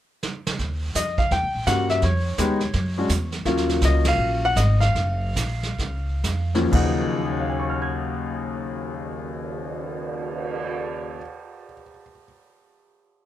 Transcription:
0.23 snare
0.47 snare
0.59 upright bass D#2, brush sweep, kick, snare
0.95 upright bass F2, grand piano D#5, kick, snare, hi-hat pedal
1.18 grand piano F5, kick, snare
1.31 upright bass E2, grand piano G5, brush sweep, kick, snare
1.42 upright bass C#2
1.55 upright bass A#1
1.66 upright bass G2, grand piano G3 A#3 C#4 F#4 F#5, kick, snare, hi-hat pedal
1.89 grand piano E5, snare
2.02 upright bass F2, grand piano C#5, brush sweep, kick, snare
2.38 upright bass D#2, grand piano G#3 B3 D#4 G4, kick, snare, hi-hat pedal
2.60 snare
2.73 upright bass F#2, brush sweep, kick, snare
2.98 grand piano G#3 C#4 D4 F#4
3.09 upright bass E2, kick, snare, hi-hat pedal
3.32 snare
3.45 upright bass D#2, grand piano F#3 A#3 C#4 F4, brush sweep, kick, snare
3.57 snare
3.69 snare
3.81 upright bass C#2, grand piano D#5, kick, snare, hi-hat pedal
4.05 grand piano F5, snare, ride
4.18 upright bass A#1, brush sweep
4.45 grand piano F#5
4.56 upright bass G#1, grand piano D#5, kick, snare, hi-hat pedal
4.80 grand piano F5, snare
4.95 upright bass F#1, brush sweep, kick, snare
5.36 upright bass A#1, kick, snare, hi-hat pedal
5.63 snare
5.78 upright bass C#2, brush sweep, kick, snare
6.24 upright bass F2, kick, snare, hi-hat pedal
6.55 grand piano D#2 F3 F#3 A#3 C#4, snare
6.72 grand piano D#2 C#3 F#3 D#4 F#5, upright bass D#2, kick, crash
7.05 cymbal swell
7.25 grand piano G#4
7.32 grand piano C#5
7.40 grand piano F5
7.49 grand piano G#5
7.59 grand piano C#6
7.70 grand piano F6
7.82 grand piano G#6

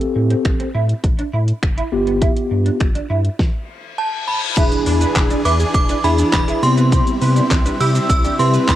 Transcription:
Already playing: tine electric piano C4 G4 A4
0.01 closed hi-hat
0.16 sub bass A2, muted clean electric guitar stroke
0.30 clean electric guitar C4, closed hi-hat
0.45 sub bass A1, finger snap, muted clean electric guitar stroke, kick, closed hi-hat
0.60 clean electric guitar C4, closed hi-hat
0.75 sub bass A2, clean electric guitar E4
0.89 closed hi-hat
1.04 sub bass A1, muted clean electric guitar stroke, kick, closed hi-hat
1.19 clean electric guitar D4, closed hi-hat
1.33 sub bass A2, clean electric guitar E4
1.48 closed hi-hat
1.63 sub bass F#1, finger snap, kick, closed hi-hat
1.77 clean electric guitar E4, closed hi-hat
1.92 sub bass G1, tine electric piano B3 F4 G4, muted clean electric guitar stroke
2.07 clean electric guitar B3, closed hi-hat
2.22 clean electric guitar E4, kick, closed hi-hat
2.37 closed hi-hat
2.51 sub bass G2, muted clean electric guitar stroke
2.66 clean electric guitar D4, closed hi-hat
2.80 sub bass G1, finger snap, muted clean electric guitar stroke, kick, closed hi-hat
2.95 clean electric guitar D4, closed hi-hat
3.10 sub bass G2, clean electric guitar E4
3.25 closed hi-hat
3.39 kick, snare, reverse cymbal
3.98 synth bell A5
4.28 synth bell B5
4.57 sub bass E1, supersaw synth E3 D4 G#4, tine electric piano D4 E4 G#4, clean electric guitar E4, synth pluck B4, kick, closed hi-hat, crash, impact, shaker
4.72 closed hi-hat, shaker
4.86 sub bass E2, synth pluck D4, muted clean electric guitar stroke, open hi-hat, shaker
5.01 clean electric guitar D4, synth pluck B4, closed hi-hat, shaker
5.16 sub bass E1, synth pluck G#4, muted clean electric guitar stroke, kick, snare, clap, closed hi-hat, shaker
5.31 clean electric guitar D4, closed hi-hat, shaker
5.45 sub bass E2, clean electric guitar E4, synth pluck B4, synth bell D6, open hi-hat, shaker
5.60 synth pluck G#4, closed hi-hat, shaker
5.74 sub bass E1, synth bell D6, muted clean electric guitar stroke, kick, closed hi-hat, shaker
5.89 clean electric guitar D4, synth pluck B4, closed hi-hat, shaker
6.04 sub bass E2, tine electric piano D4 E4 G#4, clean electric guitar E4, synth pluck G#4, synth bell B5, open hi-hat, shaker
6.18 synth pluck D4, closed hi-hat, shaker
6.33 sub bass E1, synth pluck B4, synth bell B5, kick, snare, clap, closed hi-hat, shaker
6.48 clean electric guitar E4, synth pluck G#4, closed hi-hat, shaker
6.63 sub bass C3, supersaw synth C3 G3 E4, tine electric piano B3 C4 E4, synth bell C6, muted clean electric guitar stroke, open hi-hat, shaker
6.77 clean electric guitar B3, synth pluck B4, closed hi-hat, shaker
6.92 clean electric guitar C4, synth pluck G4, kick, closed hi-hat, shaker
7.07 closed hi-hat, shaker
7.21 sub bass C3, synth pluck B4, muted clean electric guitar stroke, open hi-hat, shaker
7.36 clean electric guitar D4, closed hi-hat, shaker
7.51 sub bass C2, synth pluck C4, muted clean electric guitar stroke, kick, snare, clap, closed hi-hat, shaker
7.66 clean electric guitar D4, synth pluck B4, closed hi-hat, shaker
7.80 sub bass C3, clean electric guitar E4, synth pluck G4, synth bell E6, open hi-hat, shaker
7.95 synth pluck C4, closed hi-hat, shaker
8.10 sub bass C2, synth bell E6, muted clean electric guitar stroke, kick, closed hi-hat, shaker
8.25 clean electric guitar D4, synth pluck G4, closed hi-hat, shaker
8.39 sub bass C3, tine electric piano C4 E4 B4, synth pluck C4, clean electric guitar E4, synth bell C6, open hi-hat, shaker
8.54 synth pluck B4, closed hi-hat, shaker
8.68 sub bass C2, synth bell B5, kick, snare, clap, closed hi-hat, shaker

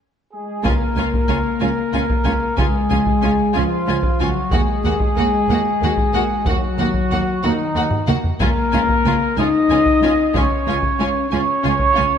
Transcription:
0.32 french horn section G#3, trumpet section G#4
0.64 cello section C#2, double bass section C#2, french horn section A#3, viola section C#4, violin section F4 G#5, trumpet section A#4, taiko
0.96 double bass section C#2, cello section C#2, viola section C#4, violin section F4 G#5
1.14 taiko
1.28 double bass section C#2, cello section C#2, viola section C#4, violin section F4 G#5
1.60 double bass section C#2, cello section C#2, viola section C#4, violin section F4 G#5
1.93 double bass section C#2, cello section C#2, viola section C#4, violin section F4 G#5
2.10 taiko
2.24 double bass section C#2, cello section C#2, viola section C#4, violin section F4 G#5
2.57 double bass section C#2, cello section C#2, viola section C#4, violin section F4 G#5, trumpet section G#4, taiko
2.61 french horn section G#3
2.90 double bass section C#2, cello section C#2, viola section C#4, violin section F4 G#5
3.06 taiko
3.22 double bass section C#2, cello section C#2, viola section C#4, violin section F4 G#5
3.55 double bass section C#2, cello section C#2, french horn section F3, viola section C#4, violin section F4 G#5, trumpet section F4
3.87 double bass section C#2, cello section C#2, viola section C#4, violin section F4 G#5
4.03 taiko
4.20 double bass section C#2, cello section C#2, french horn section F#3, viola section C#4, violin section F4 G#5, trumpet section F#4
4.51 double bass section D#2, cello section D#2, french horn section G#3, viola section A#3, violin section F#4 F#5, trumpet section G#4, taiko
4.84 double bass section D#2, cello section D#2, viola section A#3, violin section F#4 F#5
5.00 taiko
5.16 double bass section D#2, cello section D#2, viola section A#3, violin section F#4 F#5
5.48 double bass section D#2, cello section D#2, viola section A#3, violin section F#5
5.53 violin section F#4
5.81 double bass section D#2, cello section D#2, viola section A#3, violin section F#4 F#5
5.97 taiko
6.13 double bass section D#2, cello section D#2, viola section A#3, violin section F#4 F#5
6.45 double bass section D#2, cello section D#2, french horn section F#3, viola section A#3, trumpet section F#4, violin section F#5, taiko
6.49 violin section F#4
6.78 double bass section D#2, cello section D#2, viola section A#3, violin section F#4 F#5
6.94 taiko
7.10 double bass section D#2, cello section D#2, viola section A#3, violin section F#4 F#5
7.43 double bass section D#2, cello section D#2, french horn section D#3, viola section A#3, trumpet section D#4, violin section F#4 F#5
7.75 double bass section D#2, cello section D#2, viola section A#3, violin section F#4 F#5
7.91 taiko low-mid
8.07 double bass section D#2, cello section D#2, viola section A#3, violin section F#4 F#5, taiko mid
8.24 taiko low
8.39 double bass section C#2, cello section C#2, french horn section A#3, viola section C#4, violin section F4 G#5, trumpet section A#4, taiko
8.72 double bass section C#2, cello section C#2, viola section C#4, violin section F4 G#5
8.89 taiko
9.05 double bass section C#2, cello section C#2, viola section C#4, violin section F4 G#5
9.37 double bass section C#2, cello section C#2, viola section C#4, french horn section D#4, violin section F4 G#5, trumpet section D#5
9.69 double bass section C#2, cello section C#2, viola section C#4, violin section F4 G#5
9.86 taiko
10.02 double bass section C#2, cello section C#2, viola section C#4, violin section F4 G#5
10.34 double bass section C#2, cello section C#2, viola section C#4, french horn section C#4, violin section F4 G#5, trumpet section C#5, taiko
10.67 double bass section C#2, cello section C#2, viola section C#4, violin section F4 G#5
10.82 taiko
10.99 double bass section C#2, cello section C#2, viola section C#4, violin section F4 G#5
11.30 double bass section C#2, cello section C#2, french horn section C#4, viola section C#4, violin section F4 G#5, trumpet section C#5
11.63 double bass section C#2, cello section C#2, viola section C#4, violin section F4 G#5
11.79 taiko
11.94 double bass section C#2, cello section C#2, viola section C#4, violin section F4 G#5

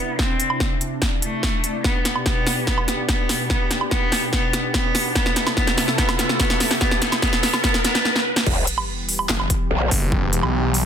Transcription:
Already playing: analog synth pad C3 D4 E4, cello B3
0.19 cello C4, kick, snare
0.40 closed hi-hat
0.50 low woodblock
0.60 kick, snare
0.81 closed hi-hat
1.02 kick, snare
1.22 cello A3, closed hi-hat
1.43 kick, snare
1.64 closed hi-hat
1.84 analog synth pad B2 G4, cello B3, kick, snare, riser
2.05 snare, closed hi-hat
2.16 low woodblock
2.26 cello B3, kick, snare
2.47 snare, open hi-hat
2.67 cello B3, kick, snare
2.78 low woodblock
2.88 snare, closed hi-hat
3.09 cello B3, kick, snare
3.29 snare, open hi-hat
3.50 cello B3, kick, snare
3.71 snare, closed hi-hat
3.81 low woodblock
3.91 cello B3, kick, snare
4.12 snare, open hi-hat
4.33 cello B3, kick, snare
4.53 snare, closed hi-hat
4.74 cello B3, kick, snare
4.95 snare, open hi-hat
5.15 analog synth pad C3 A3 E4 A4, cello B3, kick, snare
5.26 snare
5.36 snare, closed hi-hat
5.47 snare, low woodblock
5.57 cello B3, kick, snare
5.67 snare
5.78 snare, open hi-hat
5.88 snare
5.98 cello B3, kick, snare
6.09 snare, low woodblock
6.19 snare, closed hi-hat
6.29 snare
6.40 cello B3, kick, snare
6.50 snare
6.60 snare, open hi-hat
6.71 snare
6.81 cello B3, kick, snare
6.91 snare
7.02 cello B3, snare, closed hi-hat
7.12 snare, closed hi-hat, low woodblock
7.22 cello B3, kick, snare
7.33 snare
7.43 cello B3, snare, open hi-hat
7.54 snare, low woodblock
7.64 cello B3, kick, snare
7.74 snare
7.84 cello B3, snare, closed hi-hat
7.95 snare
8.05 snare
8.16 snare
8.36 snare
8.47 wobble bass E1, analog synth pad E3 G3 B3 G4, kick, crash, sub drop
8.67 closed hi-hat
8.78 low woodblock
9.09 open hi-hat
9.19 low woodblock
9.29 detuned saw bass F#1, snare, clap
9.40 low woodblock
9.50 kick, closed hi-hat
9.71 wobble bass B1
9.91 detuned saw bass F#1, kick, open hi-hat
10.12 kick
10.33 detuned saw bass E1, closed hi-hat
10.43 detuned saw bass B1, low woodblock
10.74 open hi-hat

